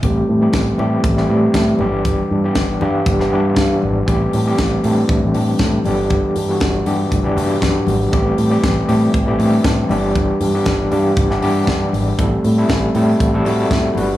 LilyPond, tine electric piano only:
<<
  \new Staff \with { instrumentName = "Tine electric piano" } { \time 4/4 \key a \minor \tempo 4 = 118 r1 | r1 | r2 <b e'>8 <d' g'>8 <e' a'>4 | r1 |
r1 | r1 | r1 | }
  \new Staff \with { instrumentName = "Tine electric piano" } { \time 4/4 \key a \minor <e g a c' g'>8. <e g a c' g'>8. <e g a c' g'>8. <e g a c' g'>16 <e g a c' g'>4 <e g b d' g'>8~ | <e g b d' g'>8 r16 <e g b d' g'>8. <e g b d' g'>8. <e g b d' g'>16 <e g b d' g'>4~ <e g b d' g'>16 r16 | <e g a c' g'>8. <e g a c' g'>8. <e g a c' d'>8. r4 r16 <e g b d' g'>8~ | <e g b d' g'>8 r16 <e g b d' fis'>8. <e g b d' g'>8. <e g b d' g'>16 <e g b d' fis' g'>4~ <e g b d' fis' g'>16 r16 |
<e g a c' g'>8. <e g a c' g'>8. <e g a c' g'>8. <e g a c' g'>16 <e g a b c' d'>4 <e g b d' g'>8~ | <e g b d' g'>8 r16 <e g b d' g'>8. <e g b d' g'>8. <e g b d' g'>16 <e g b d' g'>4~ <e g b d' g'>16 r16 | <g a c' e' a'>8. <g a c' e' a'>8. <g a c' e' a'>8. <g a c' e' a'>16 <g a c' e' fis'>4 <g b d' fis' b'>8 | }
>>